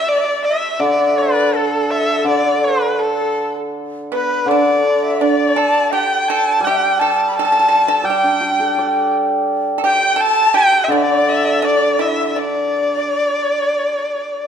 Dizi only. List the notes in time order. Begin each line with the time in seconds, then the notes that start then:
Already playing: E5
0.11 D5
0.19 E5
0.25 D5
0.49 E5
0.85 D5
0.92 E5
1.00 D5
1.07 E5
1.16 D5
1.22 E5
1.30 D5
1.56 A4
2.28 D5
2.67 B4
2.74 D6 E6
2.83 A5 B5
2.89 G5
2.93 D5 E5
3.00 B4
3.05 A4
4.14 B4
4.48 D5
5.03 E5
5.22 D5
5.91 G5
6.64 G5
6.71 E5
6.77 G5
6.99 A5
7.28 B5
7.36 A5
8.01 A5
8.08 G5
9.83 G5
10.18 A5
10.54 G5
10.90 D5
10.97 E5
11.03 D5
11.63 D5
11.97 E5
12.34 D5